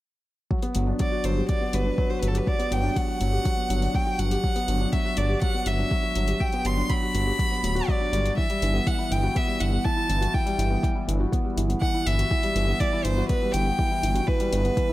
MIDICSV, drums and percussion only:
0, 0, Header, 1, 2, 480
1, 0, Start_track
1, 0, Key_signature, 1, "major"
1, 0, Tempo, 491803
1, 494, Time_signature, 4, 2, 24, 8
1, 14570, End_track
2, 0, Start_track
2, 0, Title_t, "Drums"
2, 495, Note_on_c, 9, 36, 84
2, 592, Note_off_c, 9, 36, 0
2, 610, Note_on_c, 9, 42, 33
2, 707, Note_off_c, 9, 42, 0
2, 728, Note_on_c, 9, 42, 54
2, 826, Note_off_c, 9, 42, 0
2, 969, Note_on_c, 9, 42, 34
2, 975, Note_on_c, 9, 36, 85
2, 1066, Note_off_c, 9, 42, 0
2, 1072, Note_off_c, 9, 36, 0
2, 1209, Note_on_c, 9, 42, 52
2, 1307, Note_off_c, 9, 42, 0
2, 1452, Note_on_c, 9, 42, 35
2, 1454, Note_on_c, 9, 36, 89
2, 1549, Note_off_c, 9, 42, 0
2, 1552, Note_off_c, 9, 36, 0
2, 1690, Note_on_c, 9, 42, 51
2, 1788, Note_off_c, 9, 42, 0
2, 1933, Note_on_c, 9, 36, 82
2, 2031, Note_off_c, 9, 36, 0
2, 2172, Note_on_c, 9, 42, 51
2, 2270, Note_off_c, 9, 42, 0
2, 2293, Note_on_c, 9, 42, 35
2, 2391, Note_off_c, 9, 42, 0
2, 2413, Note_on_c, 9, 36, 86
2, 2510, Note_off_c, 9, 36, 0
2, 2534, Note_on_c, 9, 42, 34
2, 2631, Note_off_c, 9, 42, 0
2, 2653, Note_on_c, 9, 42, 49
2, 2750, Note_off_c, 9, 42, 0
2, 2892, Note_on_c, 9, 36, 87
2, 2893, Note_on_c, 9, 42, 36
2, 2990, Note_off_c, 9, 36, 0
2, 2990, Note_off_c, 9, 42, 0
2, 3130, Note_on_c, 9, 42, 54
2, 3227, Note_off_c, 9, 42, 0
2, 3370, Note_on_c, 9, 42, 35
2, 3371, Note_on_c, 9, 36, 94
2, 3468, Note_off_c, 9, 42, 0
2, 3469, Note_off_c, 9, 36, 0
2, 3613, Note_on_c, 9, 42, 57
2, 3711, Note_off_c, 9, 42, 0
2, 3731, Note_on_c, 9, 42, 25
2, 3829, Note_off_c, 9, 42, 0
2, 3851, Note_on_c, 9, 36, 89
2, 3949, Note_off_c, 9, 36, 0
2, 4089, Note_on_c, 9, 42, 53
2, 4187, Note_off_c, 9, 42, 0
2, 4209, Note_on_c, 9, 42, 36
2, 4307, Note_off_c, 9, 42, 0
2, 4331, Note_on_c, 9, 36, 89
2, 4429, Note_off_c, 9, 36, 0
2, 4449, Note_on_c, 9, 42, 36
2, 4547, Note_off_c, 9, 42, 0
2, 4569, Note_on_c, 9, 42, 50
2, 4667, Note_off_c, 9, 42, 0
2, 4809, Note_on_c, 9, 42, 37
2, 4811, Note_on_c, 9, 36, 95
2, 4907, Note_off_c, 9, 42, 0
2, 4908, Note_off_c, 9, 36, 0
2, 5044, Note_on_c, 9, 42, 58
2, 5142, Note_off_c, 9, 42, 0
2, 5286, Note_on_c, 9, 42, 34
2, 5290, Note_on_c, 9, 36, 97
2, 5383, Note_off_c, 9, 42, 0
2, 5387, Note_off_c, 9, 36, 0
2, 5524, Note_on_c, 9, 42, 60
2, 5621, Note_off_c, 9, 42, 0
2, 5770, Note_on_c, 9, 36, 95
2, 5868, Note_off_c, 9, 36, 0
2, 6007, Note_on_c, 9, 42, 52
2, 6104, Note_off_c, 9, 42, 0
2, 6125, Note_on_c, 9, 42, 37
2, 6223, Note_off_c, 9, 42, 0
2, 6251, Note_on_c, 9, 36, 87
2, 6349, Note_off_c, 9, 36, 0
2, 6369, Note_on_c, 9, 42, 35
2, 6466, Note_off_c, 9, 42, 0
2, 6489, Note_on_c, 9, 42, 53
2, 6587, Note_off_c, 9, 42, 0
2, 6730, Note_on_c, 9, 42, 35
2, 6733, Note_on_c, 9, 36, 95
2, 6827, Note_off_c, 9, 42, 0
2, 6830, Note_off_c, 9, 36, 0
2, 6974, Note_on_c, 9, 42, 52
2, 7072, Note_off_c, 9, 42, 0
2, 7214, Note_on_c, 9, 36, 94
2, 7218, Note_on_c, 9, 42, 35
2, 7311, Note_off_c, 9, 36, 0
2, 7316, Note_off_c, 9, 42, 0
2, 7456, Note_on_c, 9, 42, 59
2, 7553, Note_off_c, 9, 42, 0
2, 7577, Note_on_c, 9, 42, 26
2, 7675, Note_off_c, 9, 42, 0
2, 7695, Note_on_c, 9, 36, 98
2, 7793, Note_off_c, 9, 36, 0
2, 7937, Note_on_c, 9, 42, 53
2, 8034, Note_off_c, 9, 42, 0
2, 8057, Note_on_c, 9, 42, 35
2, 8155, Note_off_c, 9, 42, 0
2, 8176, Note_on_c, 9, 36, 87
2, 8273, Note_off_c, 9, 36, 0
2, 8294, Note_on_c, 9, 42, 35
2, 8391, Note_off_c, 9, 42, 0
2, 8416, Note_on_c, 9, 42, 50
2, 8513, Note_off_c, 9, 42, 0
2, 8655, Note_on_c, 9, 42, 37
2, 8656, Note_on_c, 9, 36, 89
2, 8753, Note_off_c, 9, 36, 0
2, 8753, Note_off_c, 9, 42, 0
2, 8898, Note_on_c, 9, 42, 54
2, 8996, Note_off_c, 9, 42, 0
2, 9135, Note_on_c, 9, 42, 36
2, 9136, Note_on_c, 9, 36, 85
2, 9233, Note_off_c, 9, 36, 0
2, 9233, Note_off_c, 9, 42, 0
2, 9374, Note_on_c, 9, 42, 56
2, 9471, Note_off_c, 9, 42, 0
2, 9615, Note_on_c, 9, 36, 94
2, 9712, Note_off_c, 9, 36, 0
2, 9853, Note_on_c, 9, 42, 49
2, 9951, Note_off_c, 9, 42, 0
2, 9979, Note_on_c, 9, 42, 36
2, 10076, Note_off_c, 9, 42, 0
2, 10094, Note_on_c, 9, 36, 86
2, 10192, Note_off_c, 9, 36, 0
2, 10216, Note_on_c, 9, 42, 33
2, 10314, Note_off_c, 9, 42, 0
2, 10337, Note_on_c, 9, 42, 50
2, 10435, Note_off_c, 9, 42, 0
2, 10574, Note_on_c, 9, 36, 87
2, 10580, Note_on_c, 9, 42, 35
2, 10671, Note_off_c, 9, 36, 0
2, 10678, Note_off_c, 9, 42, 0
2, 10821, Note_on_c, 9, 42, 54
2, 10918, Note_off_c, 9, 42, 0
2, 11054, Note_on_c, 9, 36, 87
2, 11060, Note_on_c, 9, 42, 35
2, 11152, Note_off_c, 9, 36, 0
2, 11157, Note_off_c, 9, 42, 0
2, 11297, Note_on_c, 9, 42, 55
2, 11395, Note_off_c, 9, 42, 0
2, 11418, Note_on_c, 9, 42, 25
2, 11515, Note_off_c, 9, 42, 0
2, 11534, Note_on_c, 9, 36, 86
2, 11632, Note_off_c, 9, 36, 0
2, 11777, Note_on_c, 9, 42, 51
2, 11875, Note_off_c, 9, 42, 0
2, 11898, Note_on_c, 9, 42, 36
2, 11996, Note_off_c, 9, 42, 0
2, 12014, Note_on_c, 9, 36, 84
2, 12112, Note_off_c, 9, 36, 0
2, 12133, Note_on_c, 9, 42, 35
2, 12231, Note_off_c, 9, 42, 0
2, 12256, Note_on_c, 9, 42, 49
2, 12354, Note_off_c, 9, 42, 0
2, 12495, Note_on_c, 9, 36, 88
2, 12497, Note_on_c, 9, 42, 35
2, 12593, Note_off_c, 9, 36, 0
2, 12595, Note_off_c, 9, 42, 0
2, 12734, Note_on_c, 9, 42, 56
2, 12832, Note_off_c, 9, 42, 0
2, 12974, Note_on_c, 9, 42, 34
2, 12976, Note_on_c, 9, 36, 88
2, 13071, Note_off_c, 9, 42, 0
2, 13074, Note_off_c, 9, 36, 0
2, 13212, Note_on_c, 9, 42, 57
2, 13310, Note_off_c, 9, 42, 0
2, 13457, Note_on_c, 9, 36, 90
2, 13555, Note_off_c, 9, 36, 0
2, 13697, Note_on_c, 9, 42, 54
2, 13794, Note_off_c, 9, 42, 0
2, 13815, Note_on_c, 9, 42, 35
2, 13913, Note_off_c, 9, 42, 0
2, 13936, Note_on_c, 9, 36, 93
2, 14034, Note_off_c, 9, 36, 0
2, 14054, Note_on_c, 9, 42, 35
2, 14152, Note_off_c, 9, 42, 0
2, 14177, Note_on_c, 9, 42, 55
2, 14274, Note_off_c, 9, 42, 0
2, 14298, Note_on_c, 9, 42, 24
2, 14395, Note_off_c, 9, 42, 0
2, 14416, Note_on_c, 9, 36, 91
2, 14416, Note_on_c, 9, 42, 33
2, 14514, Note_off_c, 9, 36, 0
2, 14514, Note_off_c, 9, 42, 0
2, 14570, End_track
0, 0, End_of_file